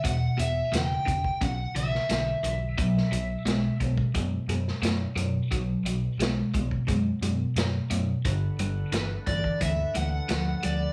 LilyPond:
<<
  \new Staff \with { instrumentName = "Electric slide guitar" } { \time 4/4 \key b \minor \tempo 4 = 88 fis''8 e''8 g''4 fis''8 e''4.~ | e''4. r2 r8 | r1 | r4 b'8 d''8 e''8 fis''4 d''8 | }
  \new Staff \with { instrumentName = "Tonewheel organ" } { \time 4/4 \key b \minor r1 | r1 | r1 | <d' a' b' fis''>1 | }
  \new Staff \with { instrumentName = "Overdriven electric guitar" } { \clef bass \time 4/4 \key b \minor <e, b,>8 <e, b,>8 <e, cis>8 <e, cis>8 <e, cis>8 <e, cis>8 <e, d>8 <e, d>8 | <b, fis>8 <b, fis>8 <b, gis>8 <b, gis>8 <b, gis>8 <b, gis>8 <b, a>8 <b, a>8 | <b, fis>8 <b, fis>8 <b, gis>8 <b, gis>8 <b, gis>8 <b, gis>8 <b, a>8 <b, a>8 | <g, d>8 <g, d>8 <g, e>8 <g, e>8 <g, e>8 <g, e>8 <g, eis>8 <g, eis>8 | }
  \new Staff \with { instrumentName = "Picked electric bass" } { \clef bass \time 4/4 \key b \minor e,,8 e,,8 e,,8 e,,8 b,,8 b,,8 b,,8 b,,8 | b,,8 b,,8 b,,8 b,,8 fis,8 fis,8 fis,8 fis,8 | b,,8 b,,8 b,,8 b,,8 fis,8 fis,8 fis,8 fis,8 | g,,8 g,,8 g,,8 g,,8 d,8 d,8 d,8 d,8 | }
  \new DrumStaff \with { instrumentName = "Drums" } \drummode { \time 4/4 <hh bd>8 hh8 <hh sn>8 <hh bd>16 bd16 <hh bd>8 hh16 sn16 <hh sn>8 hh8 | <hh bd>16 sn16 hh8 <hh sn>8 <hh bd>16 bd16 <hh bd>8 hh16 sn16 <hh sn>8 hh8 | <hh bd>8 hh8 <hh sn>8 <hh bd>16 bd16 <hh bd>8 hh8 <hh sn>8 hh8 | <hh bd>8 hh8 <hh sn>8 <hh bd>16 bd16 <hh bd>8 hh8 <hh sn>8 hh8 | }
>>